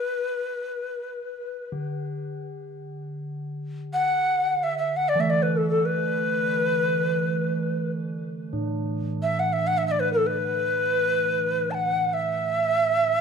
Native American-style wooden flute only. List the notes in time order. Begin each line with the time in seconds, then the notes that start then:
Already playing: B4
3.93 F#5
4.63 E5
4.78 E5
4.96 F#5
5.09 D5
5.20 E5
5.30 D5
5.43 B4
5.57 A4
5.70 A4
5.86 B4
9.23 E5
9.39 F#5
9.53 E5
9.67 F#5
9.78 E5
9.87 E5
9.91 D5
10.00 B4
10.13 A4
10.27 B4
11.71 F#5 A5
12.13 E5